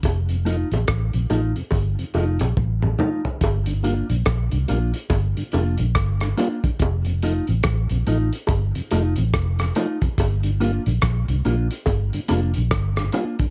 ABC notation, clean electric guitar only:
X:1
M:4/4
L:1/8
Q:"Swing 16ths" 1/4=71
K:Gm
V:1 name="Clean electric guitar"
z [A,EF] z [A,EF] z [A,EF] z [A,EF] | z [B,DF] z [B,DF] z [B,DF] z [B,DF] | z [A,EF] z [A,EF] z [A,EF] z [A,EF] | z [B,DF] z [B,DF] z [B,DF] z [B,DF] |]